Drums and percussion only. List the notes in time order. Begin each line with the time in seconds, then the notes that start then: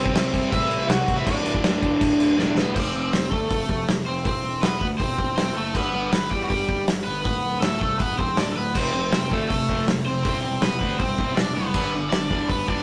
0.06 kick
0.15 snare, crash
0.34 kick, crash
0.52 kick, crash
0.71 crash
0.90 snare, crash
1.08 kick, crash
1.27 kick, crash
1.46 crash
1.55 kick
1.64 snare, crash
1.83 kick, crash
2.01 kick, crash
2.20 crash
2.39 snare
2.58 snare
2.76 kick, crash
3.13 snare, open hi-hat
3.32 kick
3.51 kick, open hi-hat
3.69 kick
3.88 snare, open hi-hat
4.25 kick, open hi-hat
4.63 snare, open hi-hat
4.81 kick
5.00 kick, open hi-hat
5.19 kick
5.37 snare, open hi-hat
5.75 kick, crash
6.12 snare, open hi-hat
6.31 kick
6.50 kick, open hi-hat
6.69 kick
6.88 snare, open hi-hat
7.25 kick, open hi-hat
7.62 snare, open hi-hat
7.81 kick
7.99 kick, open hi-hat
8.19 kick
8.37 snare, open hi-hat
8.75 kick, crash
9.12 snare, open hi-hat
9.32 kick
9.50 kick, open hi-hat
9.69 kick
9.88 snare, open hi-hat
10.25 kick, open hi-hat
10.62 snare, open hi-hat
10.81 kick
11.00 kick, open hi-hat
11.18 kick
11.37 snare, open hi-hat
11.74 kick, crash
12.12 snare, open hi-hat
12.31 kick
12.50 kick, open hi-hat
12.68 kick